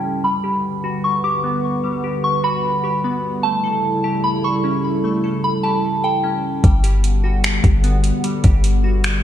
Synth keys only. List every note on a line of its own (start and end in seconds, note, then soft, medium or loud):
0.00 0.24 C#4 medium
0.00 0.24 G4 medium
0.00 0.24 A4 medium
0.24 1.44 G3 medium
0.44 1.23 G4 medium
0.84 2.04 F#4 medium
1.24 2.03 G4 medium
1.44 2.64 B3 medium
1.84 3.04 G3 medium
2.04 2.82 G4 medium
2.44 3.44 F#4 medium
2.84 3.44 G4 medium
3.04 3.44 B3 medium
3.44 4.64 A3 medium
3.64 4.43 A4 medium
4.04 5.24 G4 medium
4.44 5.22 A4 medium
4.64 5.84 C#4 medium
5.04 6.24 A3 medium
5.24 6.03 A4 medium
5.64 6.64 G4 medium
6.04 6.64 A4 medium
6.24 6.64 C#4 medium
6.64 7.84 G3 medium
6.84 7.63 G4 medium
7.24 8.44 F#4 medium
7.64 8.43 G4 medium
7.84 9.04 B3 medium
8.24 9.23 G3 medium
8.44 9.23 G4 medium
8.84 9.23 F#4 medium